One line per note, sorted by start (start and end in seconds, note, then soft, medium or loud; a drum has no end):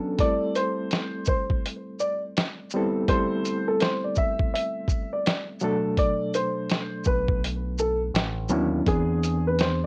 0.00 0.12 F#3 medium
0.00 0.13 B3 medium
0.00 0.13 C#4 medium
0.00 0.13 D4 medium
0.00 0.14 A4 medium
0.00 0.15 A4 medium
0.18 1.29 G3 medium
0.18 1.29 A3 medium
0.18 1.29 C4 medium
0.18 1.30 E4 medium
0.18 1.30 A4 medium
0.18 0.52 D5 loud
0.18 kick loud
0.18 closed hi-hat medium
0.56 1.24 C5 medium
0.56 closed hi-hat soft
0.56 shaker soft
0.91 snare loud
0.91 closed hi-hat medium
1.25 1.60 C5 medium
1.25 kick medium
1.25 shaker medium
1.50 kick loud
1.66 closed hi-hat medium
2.00 2.20 D5 medium
2.00 shaker medium
2.37 snare loud
2.37 closed hi-hat medium
2.70 3.03 G3 medium
2.70 3.03 B3 medium
2.70 shaker soft
2.75 3.03 C4 medium
2.75 3.04 E4 medium
2.75 3.04 A4 loud
3.08 4.18 G3 medium
3.08 4.19 A3 medium
3.08 4.19 C4 medium
3.08 4.19 E4 medium
3.08 4.20 A4 medium
3.08 3.64 C5 loud
3.08 kick loud
3.08 closed hi-hat medium
3.45 closed hi-hat soft
3.45 shaker soft
3.68 3.79 A4 medium
3.80 4.01 C5 medium
3.80 snare loud
3.80 closed hi-hat medium
4.04 4.16 D5 medium
4.15 4.50 E5 medium
4.15 kick loud
4.15 shaker medium
4.39 kick medium
4.54 5.09 E5 medium
4.54 closed hi-hat medium
4.88 kick medium
4.88 shaker medium
5.13 5.45 D5 medium
5.26 snare loud
5.26 closed hi-hat medium
5.60 6.79 B2 medium
5.60 6.79 F#3 medium
5.60 6.79 A3 medium
5.60 6.80 D4 medium
5.60 shaker soft
5.64 6.80 A4 loud
5.97 6.30 D5 loud
5.97 kick loud
5.97 closed hi-hat medium
6.34 7.02 C5 medium
6.34 closed hi-hat soft
6.34 shaker soft
6.70 snare loud
6.70 closed hi-hat medium
7.04 8.10 B1 medium
7.04 7.39 B4 medium
7.04 kick medium
7.04 shaker medium
7.28 kick medium
7.44 closed hi-hat medium
7.78 7.99 A4 medium
7.78 shaker medium
8.14 8.50 A1 loud
8.14 snare loud
8.14 closed hi-hat medium
8.49 8.80 D#2 medium
8.49 8.79 F#3 loud
8.49 8.80 B3 medium
8.49 8.80 C#4 medium
8.49 8.80 D4 medium
8.49 8.81 E4 loud
8.49 shaker soft
8.86 9.86 E2 loud
8.86 9.86 E3 medium
8.86 9.86 B3 medium
8.86 9.86 C4 medium
8.86 9.86 D4 medium
8.86 9.42 G#4 loud
8.86 9.86 G#4 medium
8.86 kick loud
8.86 closed hi-hat medium
9.23 closed hi-hat soft
9.23 shaker soft
9.47 9.58 B4 medium
9.59 9.82 C5 medium
9.59 snare loud
9.59 closed hi-hat medium